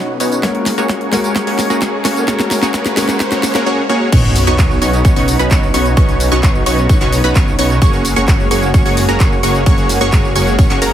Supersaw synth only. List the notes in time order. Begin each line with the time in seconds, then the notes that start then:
Already playing: B3 C#4 D#4 F#4 C#5
0.20 B3 C#4 D#4 F#4 C#5
0.43 A#3 C#4 F#4 G#4 C#5
0.78 A#3 C#4 F#4 G#4 C#5
0.89 A#3 C#4 F#4 G#4 C#5
1.13 A#3 C#4 F#4 G#4 C#5
1.36 A#3 C#4 F#4 G#4 C#5
1.47 A#3 C#4 F#4 G#4 C#5
1.70 A#3 C#4 F#4 G#4 A#4
1.82 A#3 C#4 F#4 G#4 C#5
2.05 A#3 C#4 F#4 G#4 C#5
2.28 A#3 C#4 F#4 G#4 C#5
2.63 A#3 C#4 F#4 G#4 C#5
2.74 A#3 C#4 F#4 G#4 C#5
2.97 A#3 C#4 F#4 G#4 C#5
3.20 A#3 C#4 F#4 G#4 C#5
3.32 A#3 C#4 F#4 G#4 C#5
3.55 A#3 C#4 F#4 G#4 A#4
3.66 A#3 C#4 F#4 G#4 C#5
3.89 A#3 C#4 F#4 G#4 C#5
4.12 B3 C#4 D#4 F#4 C#5
4.47 B3 C#4 D#4 F#4 C#5
4.59 C#5
4.82 B3 C#4 D#4 F#4 C#5
5.05 B3 C#4 D#4 F#4 C#5
5.16 B3 C#4 D#4 F#4 C#5
5.39 B3 C#4 D#4 F#4 B4
5.51 B3 C#4 D#4 F#4 C#5
5.74 B3 C#4 D#4 F#4 C#5
5.97 B3 C#4 D#4 F#4 C#5
6.32 B3 C#4 D#4 F#4 C#5
6.43 B3 C#4 D#4 F#4 C#5
6.66 B3 C#4 D#4 F#4 C#5
6.90 B3 C#4 D#4 F#4 C#5
7.01 B3 C#4 D#4 F#4 C#5
7.24 B3 C#4 D#4 F#4 B4
7.36 B3 C#4 D#4 F#4 C#5
7.59 B3 C#4 D#4 F#4 C#5
7.82 A#3 C#4 F#4 G#4 C#5
8.16 A#3 C#4 F#4 G#4 C#5
8.28 A#3 C#4 G#4 C#5
8.51 A#3 C#4 F#4 G#4 C#5
8.74 A#3 C#4 F#4 G#4 C#5
8.86 A#3 C#4 F#4 G#4 C#5
9.09 A#3 C#4 F#4 G#4 A#4
9.20 A#3 C#4 F#4 G#4 C#5
9.43 A#3 C#4 F#4 G#4 C#5
9.66 A#3 C#4 F#4 G#4 C#5
10.01 A#3 C#4 F#4 G#4 C#5
10.13 A#3 C#4 F#4 G#4 C#5
10.36 A#3 C#4 F#4 G#4 C#5
10.59 A#3 C#4 F#4 G#4 C#5
10.70 A#3 C#4 F#4 G#4 C#5
10.82 A#3 C#4 F#4 G#4 A#4